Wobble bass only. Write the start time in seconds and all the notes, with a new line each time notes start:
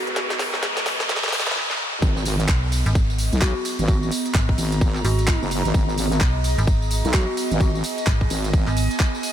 2.02 G#1
3.33 B1
3.79 G#1
4.58 G#1
5.42 F#1
5.65 G#1
5.74 G#1
7.05 B1
7.51 G#1
8.30 G#1